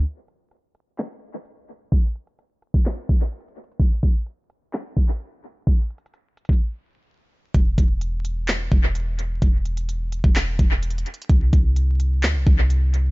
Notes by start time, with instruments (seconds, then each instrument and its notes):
0.05 closed hi-hat
0.28 closed hi-hat
0.51 closed hi-hat
0.75 closed hi-hat
0.98 clap
1.45 closed hi-hat
1.69 closed hi-hat
1.92 kick, closed hi-hat
2.15 closed hi-hat
2.27 closed hi-hat
2.39 closed hi-hat
2.62 closed hi-hat
2.74 kick
2.85 clap, closed hi-hat
3.09 kick, closed hi-hat
3.33 closed hi-hat
3.40 closed hi-hat
3.48 closed hi-hat
3.56 closed hi-hat
3.64 closed hi-hat
3.72 closed hi-hat
3.80 kick, closed hi-hat
4.03 kick, closed hi-hat
4.26 closed hi-hat
4.50 closed hi-hat
4.73 clap, closed hi-hat
4.97 kick
5.20 closed hi-hat
5.44 closed hi-hat
5.67 kick, closed hi-hat
5.90 closed hi-hat
5.98 closed hi-hat
6.06 closed hi-hat
6.14 closed hi-hat
6.37 closed hi-hat
6.45 closed hi-hat
6.49 kick, closed hi-hat
7.54 808-style bass E1, kick, closed hi-hat
7.78 808-style bass E1, kick, closed hi-hat
8.01 closed hi-hat
8.25 closed hi-hat
8.48 clap, closed hi-hat
8.72 808-style bass E1, kick
8.95 closed hi-hat
9.19 closed hi-hat
9.42 808-style bass E1, kick, closed hi-hat
9.65 closed hi-hat
9.77 closed hi-hat
9.89 closed hi-hat
10.12 closed hi-hat
10.24 808-style bass E1, kick
10.35 clap, closed hi-hat
10.59 808-style bass E1, kick, closed hi-hat
10.83 closed hi-hat
10.90 closed hi-hat
10.98 closed hi-hat
11.06 closed hi-hat
11.14 closed hi-hat
11.22 closed hi-hat
11.29 808-style bass C2, kick, closed hi-hat
11.53 808-style bass C2, kick, closed hi-hat
11.76 closed hi-hat
12.00 closed hi-hat
12.23 808-style bass D2, clap, closed hi-hat
12.35 808-style bass C2
12.47 808-style bass C2, kick
12.70 closed hi-hat
12.94 closed hi-hat